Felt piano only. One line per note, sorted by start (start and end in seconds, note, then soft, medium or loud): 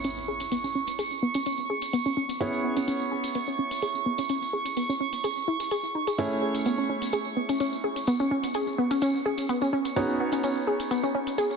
0.00 2.38 B3 medium
0.00 2.38 C#4 medium
0.00 2.38 E4 medium
0.00 2.38 G#4 medium
0.00 2.38 C#5 medium
2.40 6.16 B3 medium
2.40 6.16 C#4 medium
2.40 6.16 E4 medium
2.40 6.16 G#4 medium
2.40 6.16 C#5 medium
6.18 9.94 A3 medium
6.18 9.94 C#4 medium
6.18 9.94 E4 medium
6.18 9.94 G#4 medium
6.18 9.94 C#5 medium
9.96 11.57 B3 medium
9.96 11.57 C#4 medium
9.96 11.57 D#4 medium
9.96 11.57 F#4 medium
9.96 11.57 C#5 medium